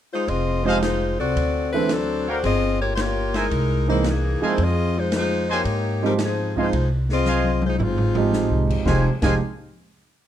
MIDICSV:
0, 0, Header, 1, 7, 480
1, 0, Start_track
1, 0, Key_signature, -4, "minor"
1, 0, Tempo, 539084
1, 245, Time_signature, 4, 2, 24, 8
1, 4564, Tempo, 531915
1, 9210, End_track
2, 0, Start_track
2, 0, Title_t, "Trumpet section"
2, 0, Program_c, 0, 61
2, 589, Note_on_c, 0, 68, 96
2, 590, Note_on_c, 0, 72, 85
2, 590, Note_on_c, 0, 77, 111
2, 591, Note_on_c, 0, 75, 86
2, 686, Note_off_c, 0, 68, 0
2, 686, Note_off_c, 0, 72, 0
2, 686, Note_off_c, 0, 75, 0
2, 686, Note_off_c, 0, 77, 0
2, 2023, Note_on_c, 0, 70, 82
2, 2023, Note_on_c, 0, 73, 74
2, 2025, Note_on_c, 0, 77, 70
2, 2025, Note_on_c, 0, 79, 84
2, 2123, Note_off_c, 0, 70, 0
2, 2123, Note_off_c, 0, 73, 0
2, 2124, Note_off_c, 0, 77, 0
2, 2124, Note_off_c, 0, 79, 0
2, 2979, Note_on_c, 0, 72, 77
2, 2979, Note_on_c, 0, 76, 78
2, 2980, Note_on_c, 0, 70, 84
2, 2980, Note_on_c, 0, 80, 88
2, 3081, Note_off_c, 0, 70, 0
2, 3081, Note_off_c, 0, 72, 0
2, 3081, Note_off_c, 0, 76, 0
2, 3081, Note_off_c, 0, 80, 0
2, 3936, Note_on_c, 0, 72, 78
2, 3936, Note_on_c, 0, 75, 80
2, 3939, Note_on_c, 0, 80, 86
2, 3940, Note_on_c, 0, 77, 70
2, 4038, Note_off_c, 0, 72, 0
2, 4038, Note_off_c, 0, 75, 0
2, 4039, Note_off_c, 0, 80, 0
2, 4040, Note_off_c, 0, 77, 0
2, 4897, Note_on_c, 0, 72, 96
2, 4898, Note_on_c, 0, 80, 104
2, 4899, Note_on_c, 0, 75, 82
2, 4900, Note_on_c, 0, 77, 81
2, 4998, Note_off_c, 0, 72, 0
2, 4999, Note_off_c, 0, 80, 0
2, 5000, Note_off_c, 0, 75, 0
2, 5001, Note_off_c, 0, 77, 0
2, 5868, Note_on_c, 0, 75, 60
2, 5869, Note_on_c, 0, 80, 74
2, 5870, Note_on_c, 0, 77, 69
2, 5871, Note_on_c, 0, 72, 73
2, 5966, Note_off_c, 0, 75, 0
2, 5967, Note_off_c, 0, 80, 0
2, 5968, Note_off_c, 0, 72, 0
2, 5968, Note_off_c, 0, 77, 0
2, 6495, Note_on_c, 0, 77, 87
2, 6497, Note_on_c, 0, 72, 86
2, 6497, Note_on_c, 0, 80, 90
2, 6499, Note_on_c, 0, 75, 84
2, 6719, Note_off_c, 0, 77, 0
2, 6720, Note_off_c, 0, 72, 0
2, 6720, Note_off_c, 0, 80, 0
2, 6721, Note_off_c, 0, 75, 0
2, 7937, Note_on_c, 0, 77, 69
2, 7938, Note_on_c, 0, 72, 76
2, 7938, Note_on_c, 0, 75, 66
2, 7938, Note_on_c, 0, 80, 81
2, 8083, Note_off_c, 0, 77, 0
2, 8084, Note_off_c, 0, 72, 0
2, 8084, Note_off_c, 0, 75, 0
2, 8084, Note_off_c, 0, 80, 0
2, 8271, Note_on_c, 0, 75, 79
2, 8272, Note_on_c, 0, 72, 84
2, 8272, Note_on_c, 0, 77, 78
2, 8272, Note_on_c, 0, 80, 96
2, 8368, Note_off_c, 0, 72, 0
2, 8368, Note_off_c, 0, 75, 0
2, 8368, Note_off_c, 0, 77, 0
2, 8368, Note_off_c, 0, 80, 0
2, 9210, End_track
3, 0, Start_track
3, 0, Title_t, "Saxophone section"
3, 0, Program_c, 1, 65
3, 107, Note_on_c, 1, 63, 78
3, 111, Note_on_c, 1, 72, 94
3, 115, Note_on_c, 1, 65, 77
3, 117, Note_on_c, 1, 56, 78
3, 235, Note_off_c, 1, 65, 0
3, 241, Note_off_c, 1, 63, 0
3, 243, Note_off_c, 1, 72, 0
3, 245, Note_on_c, 1, 65, 87
3, 246, Note_off_c, 1, 56, 0
3, 251, Note_on_c, 1, 75, 114
3, 253, Note_on_c, 1, 68, 87
3, 259, Note_on_c, 1, 60, 91
3, 566, Note_off_c, 1, 65, 0
3, 567, Note_on_c, 1, 56, 76
3, 569, Note_off_c, 1, 75, 0
3, 570, Note_off_c, 1, 68, 0
3, 572, Note_on_c, 1, 63, 74
3, 573, Note_off_c, 1, 60, 0
3, 576, Note_on_c, 1, 65, 77
3, 576, Note_on_c, 1, 72, 92
3, 716, Note_off_c, 1, 72, 0
3, 719, Note_off_c, 1, 63, 0
3, 719, Note_off_c, 1, 65, 0
3, 721, Note_off_c, 1, 56, 0
3, 726, Note_on_c, 1, 72, 90
3, 730, Note_on_c, 1, 63, 86
3, 730, Note_on_c, 1, 65, 80
3, 732, Note_on_c, 1, 56, 85
3, 1025, Note_off_c, 1, 72, 0
3, 1027, Note_off_c, 1, 63, 0
3, 1027, Note_off_c, 1, 65, 0
3, 1028, Note_off_c, 1, 56, 0
3, 1052, Note_on_c, 1, 66, 83
3, 1055, Note_on_c, 1, 69, 90
3, 1059, Note_on_c, 1, 60, 83
3, 1062, Note_on_c, 1, 74, 91
3, 1498, Note_off_c, 1, 66, 0
3, 1499, Note_off_c, 1, 69, 0
3, 1501, Note_off_c, 1, 60, 0
3, 1503, Note_off_c, 1, 74, 0
3, 1538, Note_on_c, 1, 56, 78
3, 1538, Note_on_c, 1, 71, 93
3, 1540, Note_on_c, 1, 60, 79
3, 1540, Note_on_c, 1, 64, 79
3, 1694, Note_off_c, 1, 56, 0
3, 1694, Note_off_c, 1, 71, 0
3, 1695, Note_off_c, 1, 60, 0
3, 1695, Note_off_c, 1, 64, 0
3, 1705, Note_on_c, 1, 54, 74
3, 1705, Note_on_c, 1, 62, 78
3, 1709, Note_on_c, 1, 69, 88
3, 1711, Note_on_c, 1, 60, 78
3, 2020, Note_off_c, 1, 62, 0
3, 2029, Note_off_c, 1, 54, 0
3, 2029, Note_on_c, 1, 57, 80
3, 2031, Note_off_c, 1, 69, 0
3, 2031, Note_on_c, 1, 62, 77
3, 2032, Note_off_c, 1, 60, 0
3, 2032, Note_on_c, 1, 66, 78
3, 2032, Note_on_c, 1, 72, 94
3, 2165, Note_on_c, 1, 65, 86
3, 2169, Note_on_c, 1, 60, 93
3, 2169, Note_on_c, 1, 68, 92
3, 2174, Note_off_c, 1, 57, 0
3, 2175, Note_off_c, 1, 62, 0
3, 2176, Note_off_c, 1, 66, 0
3, 2176, Note_off_c, 1, 72, 0
3, 2177, Note_on_c, 1, 75, 117
3, 2465, Note_off_c, 1, 65, 0
3, 2468, Note_off_c, 1, 60, 0
3, 2468, Note_off_c, 1, 68, 0
3, 2472, Note_off_c, 1, 75, 0
3, 2494, Note_on_c, 1, 67, 70
3, 2497, Note_on_c, 1, 65, 73
3, 2499, Note_on_c, 1, 73, 89
3, 2500, Note_on_c, 1, 58, 75
3, 2605, Note_off_c, 1, 67, 0
3, 2607, Note_off_c, 1, 65, 0
3, 2608, Note_off_c, 1, 58, 0
3, 2608, Note_off_c, 1, 73, 0
3, 2629, Note_on_c, 1, 72, 79
3, 2660, Note_off_c, 1, 72, 0
3, 2672, Note_on_c, 1, 73, 102
3, 2674, Note_on_c, 1, 67, 81
3, 2677, Note_on_c, 1, 65, 86
3, 2678, Note_on_c, 1, 58, 80
3, 2982, Note_off_c, 1, 67, 0
3, 2982, Note_off_c, 1, 73, 0
3, 2982, Note_on_c, 1, 63, 73
3, 2984, Note_off_c, 1, 58, 0
3, 2984, Note_off_c, 1, 65, 0
3, 2984, Note_on_c, 1, 56, 79
3, 2985, Note_on_c, 1, 70, 93
3, 2987, Note_on_c, 1, 64, 78
3, 3456, Note_off_c, 1, 63, 0
3, 3457, Note_off_c, 1, 56, 0
3, 3457, Note_off_c, 1, 70, 0
3, 3458, Note_off_c, 1, 64, 0
3, 3465, Note_on_c, 1, 72, 90
3, 3466, Note_on_c, 1, 58, 82
3, 3467, Note_on_c, 1, 64, 78
3, 3467, Note_on_c, 1, 68, 81
3, 3607, Note_off_c, 1, 58, 0
3, 3607, Note_off_c, 1, 72, 0
3, 3608, Note_off_c, 1, 64, 0
3, 3608, Note_off_c, 1, 68, 0
3, 3631, Note_on_c, 1, 52, 70
3, 3636, Note_on_c, 1, 63, 74
3, 3638, Note_on_c, 1, 68, 82
3, 3640, Note_on_c, 1, 58, 70
3, 3949, Note_off_c, 1, 58, 0
3, 3951, Note_off_c, 1, 52, 0
3, 3953, Note_off_c, 1, 63, 0
3, 3954, Note_off_c, 1, 68, 0
3, 3960, Note_on_c, 1, 58, 75
3, 3964, Note_on_c, 1, 68, 82
3, 3965, Note_on_c, 1, 64, 78
3, 3965, Note_on_c, 1, 72, 94
3, 4098, Note_off_c, 1, 58, 0
3, 4098, Note_off_c, 1, 68, 0
3, 4101, Note_off_c, 1, 64, 0
3, 4101, Note_off_c, 1, 72, 0
3, 4108, Note_on_c, 1, 68, 96
3, 4111, Note_on_c, 1, 65, 89
3, 4111, Note_on_c, 1, 75, 108
3, 4112, Note_on_c, 1, 60, 83
3, 4416, Note_off_c, 1, 68, 0
3, 4418, Note_off_c, 1, 60, 0
3, 4418, Note_off_c, 1, 65, 0
3, 4418, Note_off_c, 1, 75, 0
3, 4425, Note_on_c, 1, 56, 72
3, 4430, Note_on_c, 1, 65, 71
3, 4433, Note_on_c, 1, 72, 84
3, 4434, Note_on_c, 1, 63, 71
3, 4575, Note_off_c, 1, 56, 0
3, 4578, Note_off_c, 1, 65, 0
3, 4579, Note_off_c, 1, 63, 0
3, 4579, Note_off_c, 1, 72, 0
3, 4591, Note_on_c, 1, 72, 92
3, 4593, Note_on_c, 1, 65, 75
3, 4596, Note_on_c, 1, 56, 82
3, 4599, Note_on_c, 1, 63, 82
3, 4879, Note_off_c, 1, 65, 0
3, 4879, Note_off_c, 1, 72, 0
3, 4881, Note_off_c, 1, 56, 0
3, 4883, Note_off_c, 1, 63, 0
3, 4918, Note_on_c, 1, 58, 78
3, 4919, Note_on_c, 1, 63, 77
3, 4920, Note_on_c, 1, 73, 82
3, 4922, Note_on_c, 1, 67, 80
3, 5385, Note_off_c, 1, 58, 0
3, 5385, Note_off_c, 1, 63, 0
3, 5386, Note_off_c, 1, 73, 0
3, 5387, Note_off_c, 1, 67, 0
3, 5403, Note_on_c, 1, 55, 72
3, 5403, Note_on_c, 1, 60, 73
3, 5403, Note_on_c, 1, 63, 69
3, 5410, Note_on_c, 1, 70, 81
3, 5468, Note_off_c, 1, 55, 0
3, 5468, Note_off_c, 1, 60, 0
3, 5468, Note_off_c, 1, 63, 0
3, 5473, Note_off_c, 1, 70, 0
3, 5570, Note_on_c, 1, 68, 77
3, 5571, Note_on_c, 1, 63, 73
3, 5574, Note_on_c, 1, 53, 65
3, 5580, Note_on_c, 1, 60, 72
3, 5860, Note_off_c, 1, 68, 0
3, 5861, Note_off_c, 1, 63, 0
3, 5862, Note_off_c, 1, 53, 0
3, 5865, Note_off_c, 1, 60, 0
3, 5916, Note_on_c, 1, 72, 81
3, 5917, Note_on_c, 1, 63, 63
3, 5917, Note_on_c, 1, 65, 69
3, 5918, Note_on_c, 1, 56, 68
3, 6146, Note_off_c, 1, 72, 0
3, 6147, Note_off_c, 1, 56, 0
3, 6147, Note_off_c, 1, 63, 0
3, 6147, Note_off_c, 1, 65, 0
3, 6353, Note_on_c, 1, 68, 86
3, 6361, Note_on_c, 1, 65, 90
3, 6364, Note_on_c, 1, 75, 106
3, 6365, Note_on_c, 1, 60, 89
3, 6800, Note_off_c, 1, 68, 0
3, 6804, Note_off_c, 1, 65, 0
3, 6806, Note_off_c, 1, 60, 0
3, 6806, Note_off_c, 1, 75, 0
3, 6847, Note_on_c, 1, 72, 84
3, 6849, Note_on_c, 1, 56, 74
3, 6853, Note_on_c, 1, 65, 73
3, 6860, Note_on_c, 1, 63, 73
3, 6945, Note_off_c, 1, 72, 0
3, 6946, Note_off_c, 1, 56, 0
3, 6948, Note_off_c, 1, 65, 0
3, 6951, Note_off_c, 1, 63, 0
3, 6957, Note_on_c, 1, 64, 57
3, 6984, Note_off_c, 1, 64, 0
3, 6993, Note_on_c, 1, 56, 72
3, 6994, Note_on_c, 1, 60, 69
3, 6995, Note_on_c, 1, 63, 72
3, 6996, Note_on_c, 1, 65, 85
3, 7792, Note_off_c, 1, 56, 0
3, 7793, Note_off_c, 1, 60, 0
3, 7793, Note_off_c, 1, 63, 0
3, 7794, Note_off_c, 1, 65, 0
3, 7952, Note_on_c, 1, 53, 78
3, 7952, Note_on_c, 1, 60, 77
3, 7952, Note_on_c, 1, 63, 73
3, 7959, Note_on_c, 1, 68, 83
3, 8126, Note_off_c, 1, 53, 0
3, 8126, Note_off_c, 1, 60, 0
3, 8126, Note_off_c, 1, 63, 0
3, 8130, Note_off_c, 1, 68, 0
3, 8281, Note_on_c, 1, 60, 62
3, 8283, Note_on_c, 1, 63, 72
3, 8283, Note_on_c, 1, 68, 77
3, 8284, Note_on_c, 1, 53, 68
3, 8410, Note_off_c, 1, 60, 0
3, 8411, Note_off_c, 1, 53, 0
3, 8411, Note_off_c, 1, 63, 0
3, 8411, Note_off_c, 1, 68, 0
3, 9210, End_track
4, 0, Start_track
4, 0, Title_t, "Grand piano"
4, 0, Program_c, 2, 0
4, 575, Note_on_c, 2, 53, 62
4, 578, Note_on_c, 2, 56, 56
4, 580, Note_on_c, 2, 63, 51
4, 582, Note_on_c, 2, 60, 54
4, 586, Note_on_c, 2, 67, 59
4, 711, Note_off_c, 2, 53, 0
4, 712, Note_off_c, 2, 56, 0
4, 713, Note_off_c, 2, 63, 0
4, 714, Note_off_c, 2, 60, 0
4, 716, Note_off_c, 2, 67, 0
4, 1548, Note_on_c, 2, 52, 61
4, 1551, Note_on_c, 2, 57, 56
4, 1553, Note_on_c, 2, 60, 59
4, 1557, Note_on_c, 2, 69, 73
4, 1562, Note_on_c, 2, 62, 59
4, 1678, Note_off_c, 2, 52, 0
4, 1680, Note_off_c, 2, 57, 0
4, 1681, Note_off_c, 2, 60, 0
4, 1683, Note_off_c, 2, 69, 0
4, 1685, Note_off_c, 2, 62, 0
4, 3456, Note_on_c, 2, 52, 63
4, 3461, Note_on_c, 2, 56, 63
4, 3463, Note_on_c, 2, 58, 58
4, 3466, Note_on_c, 2, 60, 57
4, 3466, Note_on_c, 2, 63, 79
4, 3592, Note_off_c, 2, 52, 0
4, 3595, Note_off_c, 2, 56, 0
4, 3596, Note_off_c, 2, 58, 0
4, 3597, Note_off_c, 2, 60, 0
4, 3597, Note_off_c, 2, 63, 0
4, 3925, Note_on_c, 2, 53, 61
4, 3933, Note_on_c, 2, 60, 55
4, 3934, Note_on_c, 2, 56, 53
4, 3934, Note_on_c, 2, 63, 57
4, 3935, Note_on_c, 2, 68, 66
4, 4066, Note_off_c, 2, 53, 0
4, 4070, Note_off_c, 2, 56, 0
4, 4070, Note_off_c, 2, 60, 0
4, 4070, Note_off_c, 2, 63, 0
4, 4071, Note_off_c, 2, 68, 0
4, 5376, Note_on_c, 2, 60, 60
4, 5378, Note_on_c, 2, 53, 64
4, 5380, Note_on_c, 2, 56, 62
4, 5384, Note_on_c, 2, 63, 57
4, 5390, Note_on_c, 2, 67, 82
4, 5513, Note_off_c, 2, 60, 0
4, 5514, Note_off_c, 2, 53, 0
4, 5515, Note_off_c, 2, 56, 0
4, 5517, Note_off_c, 2, 63, 0
4, 5520, Note_off_c, 2, 67, 0
4, 5857, Note_on_c, 2, 53, 64
4, 5865, Note_on_c, 2, 60, 58
4, 5871, Note_on_c, 2, 56, 51
4, 5873, Note_on_c, 2, 63, 55
4, 5877, Note_on_c, 2, 65, 69
4, 5994, Note_off_c, 2, 53, 0
4, 5998, Note_off_c, 2, 60, 0
4, 6001, Note_off_c, 2, 56, 0
4, 6002, Note_off_c, 2, 63, 0
4, 6004, Note_off_c, 2, 65, 0
4, 7311, Note_on_c, 2, 53, 62
4, 7312, Note_on_c, 2, 56, 60
4, 7314, Note_on_c, 2, 60, 57
4, 7315, Note_on_c, 2, 63, 62
4, 7317, Note_on_c, 2, 67, 69
4, 7905, Note_off_c, 2, 53, 0
4, 7905, Note_off_c, 2, 56, 0
4, 7906, Note_off_c, 2, 60, 0
4, 7907, Note_off_c, 2, 63, 0
4, 7908, Note_off_c, 2, 67, 0
4, 7929, Note_on_c, 2, 56, 49
4, 7929, Note_on_c, 2, 63, 50
4, 7930, Note_on_c, 2, 53, 56
4, 7931, Note_on_c, 2, 60, 59
4, 7939, Note_on_c, 2, 67, 67
4, 8128, Note_off_c, 2, 53, 0
4, 8128, Note_off_c, 2, 56, 0
4, 8128, Note_off_c, 2, 63, 0
4, 8129, Note_off_c, 2, 60, 0
4, 8133, Note_off_c, 2, 67, 0
4, 8263, Note_on_c, 2, 53, 57
4, 8268, Note_on_c, 2, 56, 54
4, 8268, Note_on_c, 2, 63, 53
4, 8273, Note_on_c, 2, 60, 57
4, 8277, Note_on_c, 2, 67, 67
4, 8395, Note_off_c, 2, 53, 0
4, 8398, Note_off_c, 2, 56, 0
4, 8398, Note_off_c, 2, 63, 0
4, 8400, Note_off_c, 2, 60, 0
4, 8403, Note_off_c, 2, 67, 0
4, 9210, End_track
5, 0, Start_track
5, 0, Title_t, "Upright bass"
5, 0, Program_c, 3, 32
5, 247, Note_on_c, 3, 29, 80
5, 1024, Note_off_c, 3, 29, 0
5, 1063, Note_on_c, 3, 36, 66
5, 1200, Note_off_c, 3, 36, 0
5, 1209, Note_on_c, 3, 38, 79
5, 2135, Note_off_c, 3, 38, 0
5, 2168, Note_on_c, 3, 31, 89
5, 3094, Note_off_c, 3, 31, 0
5, 3122, Note_on_c, 3, 36, 83
5, 3900, Note_off_c, 3, 36, 0
5, 4079, Note_on_c, 3, 41, 81
5, 5007, Note_off_c, 3, 41, 0
5, 5036, Note_on_c, 3, 44, 75
5, 5969, Note_off_c, 3, 44, 0
5, 6006, Note_on_c, 3, 36, 78
5, 6933, Note_off_c, 3, 36, 0
5, 6965, Note_on_c, 3, 32, 70
5, 7571, Note_off_c, 3, 32, 0
5, 7611, Note_on_c, 3, 36, 63
5, 7759, Note_off_c, 3, 36, 0
5, 7766, Note_on_c, 3, 30, 68
5, 7916, Note_off_c, 3, 30, 0
5, 7927, Note_on_c, 3, 29, 91
5, 8113, Note_off_c, 3, 29, 0
5, 8261, Note_on_c, 3, 29, 82
5, 8399, Note_off_c, 3, 29, 0
5, 9210, End_track
6, 0, Start_track
6, 0, Title_t, "Muted upright bass strokes"
6, 3927, Note_on_c, 9, 29, 40
6, 4016, Note_off_c, 9, 29, 0
6, 9210, End_track
7, 0, Start_track
7, 0, Title_t, "Drums"
7, 248, Note_on_c, 9, 36, 30
7, 250, Note_on_c, 9, 51, 53
7, 337, Note_off_c, 9, 36, 0
7, 339, Note_off_c, 9, 51, 0
7, 734, Note_on_c, 9, 38, 64
7, 734, Note_on_c, 9, 44, 60
7, 734, Note_on_c, 9, 51, 70
7, 823, Note_off_c, 9, 38, 0
7, 823, Note_off_c, 9, 44, 0
7, 823, Note_off_c, 9, 51, 0
7, 1212, Note_on_c, 9, 36, 34
7, 1216, Note_on_c, 9, 51, 65
7, 1301, Note_off_c, 9, 36, 0
7, 1305, Note_off_c, 9, 51, 0
7, 1684, Note_on_c, 9, 38, 67
7, 1684, Note_on_c, 9, 44, 59
7, 1684, Note_on_c, 9, 51, 69
7, 1773, Note_off_c, 9, 38, 0
7, 1773, Note_off_c, 9, 44, 0
7, 1773, Note_off_c, 9, 51, 0
7, 2169, Note_on_c, 9, 51, 56
7, 2172, Note_on_c, 9, 36, 35
7, 2258, Note_off_c, 9, 51, 0
7, 2261, Note_off_c, 9, 36, 0
7, 2647, Note_on_c, 9, 38, 66
7, 2647, Note_on_c, 9, 44, 59
7, 2647, Note_on_c, 9, 51, 71
7, 2736, Note_off_c, 9, 38, 0
7, 2736, Note_off_c, 9, 44, 0
7, 2736, Note_off_c, 9, 51, 0
7, 2975, Note_on_c, 9, 38, 46
7, 2975, Note_on_c, 9, 51, 48
7, 3064, Note_off_c, 9, 38, 0
7, 3064, Note_off_c, 9, 51, 0
7, 3125, Note_on_c, 9, 36, 34
7, 3128, Note_on_c, 9, 51, 58
7, 3214, Note_off_c, 9, 36, 0
7, 3217, Note_off_c, 9, 51, 0
7, 3599, Note_on_c, 9, 38, 66
7, 3599, Note_on_c, 9, 44, 53
7, 3599, Note_on_c, 9, 51, 64
7, 3688, Note_off_c, 9, 38, 0
7, 3688, Note_off_c, 9, 44, 0
7, 3688, Note_off_c, 9, 51, 0
7, 4077, Note_on_c, 9, 36, 34
7, 4078, Note_on_c, 9, 51, 61
7, 4166, Note_off_c, 9, 36, 0
7, 4167, Note_off_c, 9, 51, 0
7, 4557, Note_on_c, 9, 38, 67
7, 4557, Note_on_c, 9, 44, 67
7, 4557, Note_on_c, 9, 51, 71
7, 4647, Note_off_c, 9, 38, 0
7, 4647, Note_off_c, 9, 44, 0
7, 4647, Note_off_c, 9, 51, 0
7, 5039, Note_on_c, 9, 36, 34
7, 5039, Note_on_c, 9, 51, 58
7, 5129, Note_off_c, 9, 36, 0
7, 5130, Note_off_c, 9, 51, 0
7, 5520, Note_on_c, 9, 38, 72
7, 5520, Note_on_c, 9, 44, 68
7, 5520, Note_on_c, 9, 51, 67
7, 5611, Note_off_c, 9, 38, 0
7, 5611, Note_off_c, 9, 44, 0
7, 5611, Note_off_c, 9, 51, 0
7, 5861, Note_on_c, 9, 36, 44
7, 5951, Note_off_c, 9, 36, 0
7, 6010, Note_on_c, 9, 36, 30
7, 6012, Note_on_c, 9, 51, 59
7, 6100, Note_off_c, 9, 36, 0
7, 6102, Note_off_c, 9, 51, 0
7, 6338, Note_on_c, 9, 38, 34
7, 6428, Note_off_c, 9, 38, 0
7, 6485, Note_on_c, 9, 44, 62
7, 6485, Note_on_c, 9, 48, 48
7, 6576, Note_off_c, 9, 44, 0
7, 6576, Note_off_c, 9, 48, 0
7, 6655, Note_on_c, 9, 48, 49
7, 6746, Note_off_c, 9, 48, 0
7, 6813, Note_on_c, 9, 48, 65
7, 6903, Note_off_c, 9, 48, 0
7, 6977, Note_on_c, 9, 43, 68
7, 7067, Note_off_c, 9, 43, 0
7, 7137, Note_on_c, 9, 43, 65
7, 7227, Note_off_c, 9, 43, 0
7, 7295, Note_on_c, 9, 43, 81
7, 7385, Note_off_c, 9, 43, 0
7, 7457, Note_on_c, 9, 38, 58
7, 7457, Note_on_c, 9, 44, 66
7, 7547, Note_off_c, 9, 38, 0
7, 7547, Note_off_c, 9, 44, 0
7, 7785, Note_on_c, 9, 36, 81
7, 7792, Note_on_c, 9, 49, 76
7, 7875, Note_off_c, 9, 36, 0
7, 7883, Note_off_c, 9, 49, 0
7, 7931, Note_on_c, 9, 36, 88
7, 7938, Note_on_c, 9, 38, 77
7, 8022, Note_off_c, 9, 36, 0
7, 8028, Note_off_c, 9, 38, 0
7, 8259, Note_on_c, 9, 38, 73
7, 8259, Note_on_c, 9, 49, 78
7, 8261, Note_on_c, 9, 36, 89
7, 8349, Note_off_c, 9, 38, 0
7, 8349, Note_off_c, 9, 49, 0
7, 8351, Note_off_c, 9, 36, 0
7, 9210, End_track
0, 0, End_of_file